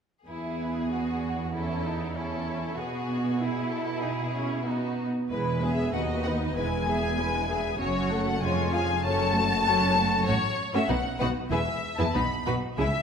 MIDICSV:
0, 0, Header, 1, 6, 480
1, 0, Start_track
1, 0, Key_signature, 4, "major"
1, 0, Tempo, 630252
1, 206, Time_signature, 2, 2, 24, 8
1, 5003, Tempo, 617284
1, 8363, Tempo, 630252
1, 9987, End_track
2, 0, Start_track
2, 0, Title_t, "Violin section"
2, 0, Program_c, 0, 48
2, 207, Note_on_c, 0, 68, 38
2, 1136, Note_off_c, 0, 68, 0
2, 1168, Note_on_c, 0, 69, 39
2, 1639, Note_off_c, 0, 69, 0
2, 1654, Note_on_c, 0, 69, 44
2, 2115, Note_off_c, 0, 69, 0
2, 2118, Note_on_c, 0, 68, 43
2, 2577, Note_off_c, 0, 68, 0
2, 2586, Note_on_c, 0, 68, 46
2, 2822, Note_off_c, 0, 68, 0
2, 2827, Note_on_c, 0, 69, 45
2, 3059, Note_on_c, 0, 68, 45
2, 3065, Note_off_c, 0, 69, 0
2, 3537, Note_on_c, 0, 66, 37
2, 3543, Note_off_c, 0, 68, 0
2, 3886, Note_off_c, 0, 66, 0
2, 4037, Note_on_c, 0, 71, 48
2, 4375, Note_off_c, 0, 71, 0
2, 4402, Note_on_c, 0, 76, 41
2, 4518, Note_on_c, 0, 78, 47
2, 4524, Note_off_c, 0, 76, 0
2, 4579, Note_off_c, 0, 78, 0
2, 4761, Note_on_c, 0, 78, 52
2, 4822, Note_off_c, 0, 78, 0
2, 5003, Note_on_c, 0, 80, 69
2, 5947, Note_off_c, 0, 80, 0
2, 5966, Note_on_c, 0, 73, 61
2, 6320, Note_off_c, 0, 73, 0
2, 6332, Note_on_c, 0, 78, 52
2, 6444, Note_on_c, 0, 80, 61
2, 6446, Note_off_c, 0, 78, 0
2, 6681, Note_off_c, 0, 80, 0
2, 6690, Note_on_c, 0, 80, 59
2, 6921, Note_off_c, 0, 80, 0
2, 6924, Note_on_c, 0, 81, 90
2, 7863, Note_off_c, 0, 81, 0
2, 7884, Note_on_c, 0, 73, 78
2, 8236, Note_off_c, 0, 73, 0
2, 8254, Note_on_c, 0, 76, 57
2, 8364, Note_on_c, 0, 78, 58
2, 8367, Note_off_c, 0, 76, 0
2, 8593, Note_off_c, 0, 78, 0
2, 8602, Note_on_c, 0, 78, 68
2, 8663, Note_off_c, 0, 78, 0
2, 8845, Note_on_c, 0, 76, 73
2, 9196, Note_off_c, 0, 76, 0
2, 9211, Note_on_c, 0, 81, 62
2, 9319, Note_on_c, 0, 83, 62
2, 9326, Note_off_c, 0, 81, 0
2, 9548, Note_off_c, 0, 83, 0
2, 9557, Note_on_c, 0, 83, 55
2, 9618, Note_off_c, 0, 83, 0
2, 9800, Note_on_c, 0, 76, 68
2, 9987, Note_off_c, 0, 76, 0
2, 9987, End_track
3, 0, Start_track
3, 0, Title_t, "Violin section"
3, 0, Program_c, 1, 48
3, 212, Note_on_c, 1, 64, 31
3, 661, Note_off_c, 1, 64, 0
3, 688, Note_on_c, 1, 66, 31
3, 1164, Note_on_c, 1, 64, 36
3, 1165, Note_off_c, 1, 66, 0
3, 1633, Note_off_c, 1, 64, 0
3, 1642, Note_on_c, 1, 64, 36
3, 2108, Note_off_c, 1, 64, 0
3, 2121, Note_on_c, 1, 66, 39
3, 2591, Note_on_c, 1, 64, 46
3, 2595, Note_off_c, 1, 66, 0
3, 3545, Note_off_c, 1, 64, 0
3, 3547, Note_on_c, 1, 63, 36
3, 3891, Note_off_c, 1, 63, 0
3, 4049, Note_on_c, 1, 71, 35
3, 4051, Note_off_c, 1, 71, 0
3, 4051, Note_on_c, 1, 71, 32
3, 4271, Note_off_c, 1, 71, 0
3, 4278, Note_on_c, 1, 76, 31
3, 4281, Note_on_c, 1, 68, 33
3, 4517, Note_on_c, 1, 75, 31
3, 4521, Note_off_c, 1, 76, 0
3, 4521, Note_on_c, 1, 71, 30
3, 4523, Note_off_c, 1, 68, 0
3, 4744, Note_off_c, 1, 75, 0
3, 4746, Note_off_c, 1, 71, 0
3, 4766, Note_on_c, 1, 71, 29
3, 4767, Note_on_c, 1, 75, 33
3, 4989, Note_off_c, 1, 71, 0
3, 4998, Note_on_c, 1, 71, 35
3, 5003, Note_off_c, 1, 71, 0
3, 5003, Note_on_c, 1, 71, 33
3, 5004, Note_off_c, 1, 75, 0
3, 5227, Note_off_c, 1, 71, 0
3, 5244, Note_on_c, 1, 68, 33
3, 5244, Note_on_c, 1, 76, 33
3, 5484, Note_off_c, 1, 68, 0
3, 5484, Note_off_c, 1, 76, 0
3, 5489, Note_on_c, 1, 71, 31
3, 5496, Note_off_c, 1, 71, 0
3, 5496, Note_on_c, 1, 71, 32
3, 5722, Note_on_c, 1, 76, 34
3, 5724, Note_on_c, 1, 68, 37
3, 5731, Note_off_c, 1, 71, 0
3, 5949, Note_on_c, 1, 73, 36
3, 5955, Note_on_c, 1, 66, 38
3, 5965, Note_off_c, 1, 76, 0
3, 5966, Note_off_c, 1, 68, 0
3, 6181, Note_off_c, 1, 73, 0
3, 6184, Note_off_c, 1, 66, 0
3, 6204, Note_on_c, 1, 78, 37
3, 6205, Note_on_c, 1, 69, 37
3, 6445, Note_off_c, 1, 69, 0
3, 6445, Note_off_c, 1, 78, 0
3, 6449, Note_on_c, 1, 65, 37
3, 6451, Note_on_c, 1, 73, 34
3, 6669, Note_off_c, 1, 65, 0
3, 6670, Note_off_c, 1, 73, 0
3, 6685, Note_on_c, 1, 77, 36
3, 6687, Note_on_c, 1, 68, 40
3, 6923, Note_off_c, 1, 77, 0
3, 6924, Note_off_c, 1, 68, 0
3, 6928, Note_on_c, 1, 69, 45
3, 6928, Note_on_c, 1, 73, 45
3, 7149, Note_off_c, 1, 69, 0
3, 7149, Note_off_c, 1, 73, 0
3, 7166, Note_on_c, 1, 69, 41
3, 7167, Note_on_c, 1, 66, 41
3, 7400, Note_off_c, 1, 69, 0
3, 7405, Note_off_c, 1, 66, 0
3, 7406, Note_on_c, 1, 73, 45
3, 7409, Note_on_c, 1, 69, 43
3, 7638, Note_off_c, 1, 69, 0
3, 7644, Note_off_c, 1, 73, 0
3, 7647, Note_on_c, 1, 69, 44
3, 7652, Note_on_c, 1, 66, 41
3, 7873, Note_off_c, 1, 66, 0
3, 7883, Note_on_c, 1, 66, 62
3, 7883, Note_on_c, 1, 73, 61
3, 7884, Note_off_c, 1, 69, 0
3, 7930, Note_off_c, 1, 66, 0
3, 7931, Note_off_c, 1, 73, 0
3, 8241, Note_on_c, 1, 66, 55
3, 8241, Note_on_c, 1, 73, 57
3, 8290, Note_off_c, 1, 66, 0
3, 8290, Note_off_c, 1, 73, 0
3, 8359, Note_on_c, 1, 59, 40
3, 8363, Note_on_c, 1, 63, 41
3, 8408, Note_off_c, 1, 59, 0
3, 8410, Note_off_c, 1, 63, 0
3, 8600, Note_on_c, 1, 66, 63
3, 8600, Note_on_c, 1, 71, 56
3, 8649, Note_off_c, 1, 66, 0
3, 8649, Note_off_c, 1, 71, 0
3, 8838, Note_on_c, 1, 71, 60
3, 8840, Note_on_c, 1, 68, 52
3, 8886, Note_off_c, 1, 71, 0
3, 8889, Note_off_c, 1, 68, 0
3, 9193, Note_on_c, 1, 71, 50
3, 9198, Note_on_c, 1, 68, 45
3, 9242, Note_off_c, 1, 71, 0
3, 9246, Note_off_c, 1, 68, 0
3, 9319, Note_on_c, 1, 59, 36
3, 9319, Note_on_c, 1, 63, 38
3, 9367, Note_off_c, 1, 63, 0
3, 9368, Note_off_c, 1, 59, 0
3, 9558, Note_on_c, 1, 71, 47
3, 9560, Note_on_c, 1, 66, 57
3, 9607, Note_off_c, 1, 71, 0
3, 9608, Note_off_c, 1, 66, 0
3, 9807, Note_on_c, 1, 68, 46
3, 9810, Note_on_c, 1, 64, 53
3, 9854, Note_off_c, 1, 68, 0
3, 9857, Note_off_c, 1, 64, 0
3, 9987, End_track
4, 0, Start_track
4, 0, Title_t, "Viola section"
4, 0, Program_c, 2, 48
4, 207, Note_on_c, 2, 59, 30
4, 1136, Note_off_c, 2, 59, 0
4, 1157, Note_on_c, 2, 61, 34
4, 1398, Note_off_c, 2, 61, 0
4, 1407, Note_on_c, 2, 63, 38
4, 1646, Note_on_c, 2, 61, 38
4, 1647, Note_off_c, 2, 63, 0
4, 2119, Note_on_c, 2, 59, 39
4, 2120, Note_off_c, 2, 61, 0
4, 2585, Note_off_c, 2, 59, 0
4, 2591, Note_on_c, 2, 64, 45
4, 3058, Note_on_c, 2, 63, 39
4, 3066, Note_off_c, 2, 64, 0
4, 3119, Note_off_c, 2, 63, 0
4, 3299, Note_on_c, 2, 61, 44
4, 3540, Note_off_c, 2, 61, 0
4, 3541, Note_on_c, 2, 59, 40
4, 3881, Note_off_c, 2, 59, 0
4, 4038, Note_on_c, 2, 64, 30
4, 4039, Note_on_c, 2, 56, 32
4, 4265, Note_off_c, 2, 56, 0
4, 4265, Note_off_c, 2, 64, 0
4, 4280, Note_on_c, 2, 59, 33
4, 4281, Note_on_c, 2, 68, 28
4, 4521, Note_on_c, 2, 63, 34
4, 4523, Note_off_c, 2, 59, 0
4, 4523, Note_off_c, 2, 68, 0
4, 4524, Note_on_c, 2, 66, 34
4, 4746, Note_off_c, 2, 63, 0
4, 4748, Note_off_c, 2, 66, 0
4, 4763, Note_on_c, 2, 59, 31
4, 4765, Note_on_c, 2, 63, 34
4, 4997, Note_on_c, 2, 64, 33
4, 5000, Note_on_c, 2, 56, 29
4, 5002, Note_off_c, 2, 59, 0
4, 5003, Note_off_c, 2, 63, 0
4, 5224, Note_off_c, 2, 64, 0
4, 5225, Note_off_c, 2, 56, 0
4, 5239, Note_on_c, 2, 59, 35
4, 5242, Note_on_c, 2, 68, 37
4, 5478, Note_on_c, 2, 56, 40
4, 5479, Note_on_c, 2, 64, 35
4, 5482, Note_off_c, 2, 59, 0
4, 5483, Note_off_c, 2, 68, 0
4, 5722, Note_off_c, 2, 56, 0
4, 5722, Note_off_c, 2, 64, 0
4, 5724, Note_on_c, 2, 68, 35
4, 5725, Note_on_c, 2, 59, 35
4, 5966, Note_off_c, 2, 59, 0
4, 5966, Note_off_c, 2, 68, 0
4, 5967, Note_on_c, 2, 61, 34
4, 5968, Note_on_c, 2, 54, 36
4, 6191, Note_off_c, 2, 54, 0
4, 6191, Note_off_c, 2, 61, 0
4, 6202, Note_on_c, 2, 57, 42
4, 6202, Note_on_c, 2, 66, 39
4, 6440, Note_on_c, 2, 61, 39
4, 6444, Note_off_c, 2, 57, 0
4, 6444, Note_off_c, 2, 66, 0
4, 6445, Note_on_c, 2, 56, 42
4, 6664, Note_off_c, 2, 61, 0
4, 6667, Note_off_c, 2, 56, 0
4, 6676, Note_on_c, 2, 65, 36
4, 6677, Note_on_c, 2, 53, 36
4, 6914, Note_on_c, 2, 54, 40
4, 6914, Note_on_c, 2, 61, 43
4, 6919, Note_off_c, 2, 53, 0
4, 6919, Note_off_c, 2, 65, 0
4, 7141, Note_off_c, 2, 54, 0
4, 7141, Note_off_c, 2, 61, 0
4, 7156, Note_on_c, 2, 57, 44
4, 7400, Note_off_c, 2, 57, 0
4, 7401, Note_on_c, 2, 61, 45
4, 7402, Note_on_c, 2, 54, 48
4, 7641, Note_off_c, 2, 61, 0
4, 7642, Note_off_c, 2, 54, 0
4, 7644, Note_on_c, 2, 57, 39
4, 7645, Note_off_c, 2, 57, 0
4, 7645, Note_on_c, 2, 57, 43
4, 7876, Note_off_c, 2, 57, 0
4, 7885, Note_on_c, 2, 57, 60
4, 7885, Note_on_c, 2, 61, 56
4, 7932, Note_off_c, 2, 61, 0
4, 7933, Note_off_c, 2, 57, 0
4, 8249, Note_on_c, 2, 61, 65
4, 8250, Note_on_c, 2, 57, 53
4, 8296, Note_off_c, 2, 61, 0
4, 8297, Note_off_c, 2, 57, 0
4, 8363, Note_on_c, 2, 63, 47
4, 8364, Note_on_c, 2, 59, 45
4, 8411, Note_off_c, 2, 63, 0
4, 8412, Note_off_c, 2, 59, 0
4, 8602, Note_on_c, 2, 59, 62
4, 8604, Note_on_c, 2, 63, 55
4, 8650, Note_off_c, 2, 59, 0
4, 8651, Note_off_c, 2, 63, 0
4, 8836, Note_on_c, 2, 59, 47
4, 8838, Note_on_c, 2, 64, 50
4, 8885, Note_off_c, 2, 59, 0
4, 8887, Note_off_c, 2, 64, 0
4, 9199, Note_on_c, 2, 64, 54
4, 9200, Note_on_c, 2, 59, 56
4, 9247, Note_off_c, 2, 64, 0
4, 9248, Note_off_c, 2, 59, 0
4, 9322, Note_on_c, 2, 59, 43
4, 9324, Note_on_c, 2, 63, 44
4, 9370, Note_off_c, 2, 59, 0
4, 9372, Note_off_c, 2, 63, 0
4, 9563, Note_on_c, 2, 63, 55
4, 9567, Note_on_c, 2, 59, 45
4, 9611, Note_off_c, 2, 63, 0
4, 9614, Note_off_c, 2, 59, 0
4, 9800, Note_on_c, 2, 56, 46
4, 9800, Note_on_c, 2, 64, 44
4, 9849, Note_off_c, 2, 56, 0
4, 9849, Note_off_c, 2, 64, 0
4, 9987, End_track
5, 0, Start_track
5, 0, Title_t, "Cello section"
5, 0, Program_c, 3, 48
5, 204, Note_on_c, 3, 40, 38
5, 2089, Note_off_c, 3, 40, 0
5, 2120, Note_on_c, 3, 47, 48
5, 3891, Note_off_c, 3, 47, 0
5, 4043, Note_on_c, 3, 40, 40
5, 4494, Note_off_c, 3, 40, 0
5, 4525, Note_on_c, 3, 39, 39
5, 5003, Note_off_c, 3, 39, 0
5, 5006, Note_on_c, 3, 40, 38
5, 5948, Note_off_c, 3, 40, 0
5, 5966, Note_on_c, 3, 42, 44
5, 6437, Note_off_c, 3, 42, 0
5, 6446, Note_on_c, 3, 41, 47
5, 6923, Note_off_c, 3, 41, 0
5, 6924, Note_on_c, 3, 42, 53
5, 7882, Note_off_c, 3, 42, 0
5, 7885, Note_on_c, 3, 45, 59
5, 7932, Note_off_c, 3, 45, 0
5, 8244, Note_on_c, 3, 45, 59
5, 8292, Note_off_c, 3, 45, 0
5, 8371, Note_on_c, 3, 47, 44
5, 8417, Note_off_c, 3, 47, 0
5, 8608, Note_on_c, 3, 47, 55
5, 8655, Note_off_c, 3, 47, 0
5, 8843, Note_on_c, 3, 40, 52
5, 8891, Note_off_c, 3, 40, 0
5, 9206, Note_on_c, 3, 40, 60
5, 9253, Note_off_c, 3, 40, 0
5, 9320, Note_on_c, 3, 47, 40
5, 9369, Note_off_c, 3, 47, 0
5, 9567, Note_on_c, 3, 47, 53
5, 9614, Note_off_c, 3, 47, 0
5, 9801, Note_on_c, 3, 49, 54
5, 9850, Note_off_c, 3, 49, 0
5, 9987, End_track
6, 0, Start_track
6, 0, Title_t, "Double bass section"
6, 0, Program_c, 4, 48
6, 4043, Note_on_c, 4, 28, 36
6, 4494, Note_off_c, 4, 28, 0
6, 4524, Note_on_c, 4, 39, 39
6, 5000, Note_on_c, 4, 28, 40
6, 5002, Note_off_c, 4, 39, 0
6, 5945, Note_off_c, 4, 28, 0
6, 5965, Note_on_c, 4, 30, 38
6, 6436, Note_off_c, 4, 30, 0
6, 6439, Note_on_c, 4, 29, 44
6, 6919, Note_off_c, 4, 29, 0
6, 6922, Note_on_c, 4, 30, 52
6, 7880, Note_on_c, 4, 33, 56
6, 7881, Note_off_c, 4, 30, 0
6, 7928, Note_off_c, 4, 33, 0
6, 8362, Note_on_c, 4, 35, 44
6, 8410, Note_off_c, 4, 35, 0
6, 8596, Note_on_c, 4, 35, 60
6, 8646, Note_off_c, 4, 35, 0
6, 8838, Note_on_c, 4, 28, 57
6, 8887, Note_off_c, 4, 28, 0
6, 9321, Note_on_c, 4, 35, 37
6, 9369, Note_off_c, 4, 35, 0
6, 9567, Note_on_c, 4, 35, 57
6, 9614, Note_off_c, 4, 35, 0
6, 9803, Note_on_c, 4, 37, 54
6, 9851, Note_off_c, 4, 37, 0
6, 9987, End_track
0, 0, End_of_file